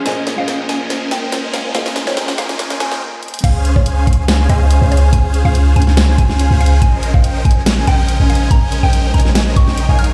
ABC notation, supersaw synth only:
X:1
M:4/4
L:1/16
Q:1/4=142
K:Bbdor
V:1 name="Supersaw synth"
[DBcea]3 [DBceg]3 [DBcea]4 [DBceg]3 [DBcea]3 | [DBcea]3 [DBceg]3 [DBcea]4 [DBceg]2 z4 | [DAcfa]3 [DAcfa]3 [DAcfa]4 [DAcfa]3 [DAcfa]3 | [DAcfa]3 [DAcfa]3 [DAcfa]4 [DAcfa]3 [DAcfa]3 |
[DBcea]3 [DBceg]3 [DBcea]4 [DBceg]3 [DBcea]3 | [DBcea]3 [DBceg]3 [DBcea]4 [DBceg]3 [EBdfa]3 |]